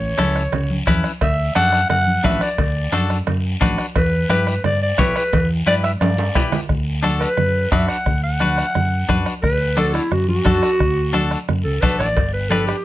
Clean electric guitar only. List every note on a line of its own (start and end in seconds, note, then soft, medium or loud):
0.18 0.42 C#4 medium
0.18 0.42 E4 medium
0.18 0.42 A4 medium
0.87 1.11 C#4 medium
0.87 1.11 E4 loud
0.87 1.11 B4 medium
1.56 1.80 D4 medium
1.56 1.80 F#4 medium
1.56 1.80 A4 medium
2.24 2.48 D4 medium
2.24 2.48 F#4 medium
2.24 2.48 B4 medium
2.92 3.17 D4 medium
2.92 3.17 F#4 medium
2.92 3.17 A4 medium
3.61 3.85 D4 loud
3.61 3.85 F#4 loud
3.61 3.86 B4 medium
4.30 4.54 E4 medium
4.30 4.54 G4 medium
4.30 4.54 B4 medium
4.98 5.22 E4 medium
4.98 5.22 G4 medium
4.98 5.23 C#5 medium
5.67 5.91 E4 medium
5.67 5.91 G4 medium
5.67 5.91 B4 medium
6.35 6.59 E4 medium
6.35 6.60 G4 medium
6.35 6.60 B4 medium
7.03 7.27 D4 medium
7.03 7.28 F#4 medium
7.03 7.28 A4 loud
7.72 7.96 D4 medium
7.72 7.96 F#4 medium
7.72 7.96 B4 medium
8.41 8.65 D4 medium
8.41 8.65 F#4 medium
8.41 8.65 B4 medium
9.09 9.33 D4 medium
9.09 9.33 F#4 medium
9.09 9.33 B4 loud
9.77 10.01 D4 medium
9.77 10.01 F#4 medium
9.77 10.02 A4 medium
10.45 10.69 D4 medium
10.45 10.70 F#4 medium
10.45 10.70 A4 medium
11.13 11.38 D4 medium
11.13 11.38 F#4 medium
11.13 11.38 A4 loud
11.82 12.07 D4 medium
11.82 12.07 F#4 medium
11.82 12.07 A4 medium
12.51 12.75 D4 medium
12.51 12.75 G4 medium
12.51 12.75 B4 medium